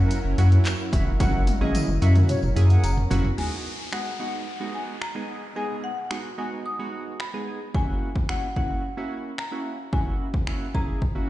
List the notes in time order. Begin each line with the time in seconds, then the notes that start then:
Already playing: F#3 A#3 C#4 E4 F#4 A#4 F#5
0.11 closed hi-hat, tambourine
0.25 F#1
0.38 F#2 F#3 A#3 C#4 E4 F#4 F#5, closed hi-hat, tambourine
0.52 closed hi-hat
0.65 clap, closed hi-hat, tambourine
0.93 E1 F#3 A#3 C#4 E4 F#4 E5, kick, closed hi-hat, tambourine
1.20 F#1 F#3 A#3 C#4 E4 F#4 F#5, kick, closed hi-hat, high tom, tambourine
1.47 closed hi-hat, high tom, tambourine
1.61 G#1 F#3 A#3 C#4 E4 G#4 D#5, high tom
1.75 closed hi-hat, mid tom, tambourine
1.88 F#1, mid tom
2.02 F#2 F#3 A#3 C#4 E4 F#4 E5, closed hi-hat, tambourine
2.15 closed hi-hat, mid tom, tambourine
2.29 C#5, closed hi-hat, mid tom, tambourine
2.42 F#1, mid tom, tambourine
2.56 F#2 F#3 A#3 C#4 E4 G#4, closed hi-hat, tambourine
2.70 F#5, closed hi-hat, tambourine
2.84 F#1 A#5, closed hi-hat, tambourine
2.97 floor tom
3.10 F#1 F#3 A#3 C#4 E4 F#4, closed hi-hat, floor tom, tambourine
3.24 floor tom
3.38 G#3 B3 D#4 F#4 G#5, crash, downlifter
3.92 G#3 B3 D#4 F#4 F#5, finger snap
4.20 G#3 B3 D#4 F#4 F#5
4.60 G#3 B3 D#4 F#4
4.75 G#5
5.02 A#5, finger snap
5.15 G#3 B3 D#4 G#4
5.56 G#3 B3 D#4 G#4 G#5
5.84 F#5
6.10 G#3 B3 D#4 F#4, finger snap
6.38 G#3 B3 D#4 F#4 G#5
6.66 D#6
6.79 G#3 B3 D#4 F#4
7.20 B5, finger snap
7.34 G#3 B3 D#4 G#4
7.74 A#3 C#4 E4 F#4 G#5, kick
8.16 kick
8.29 A#3 C#4 E4 F#4 F#5, finger snap
8.56 A#3 C#4 E4 F#4 F#5, kick
8.97 A#3 C#4 E4 F#4
9.38 A#5, finger snap
9.52 A#3 C#4 E4 F#4
9.93 A#3 C#4 E4 F#4 G#5, kick
10.34 kick
10.47 A#3 C#4 E4 F#4, finger snap
10.74 A#3 C#4 E4 G#4 A#5, kick
11.02 kick
11.15 A#3 C#4 E4 F#4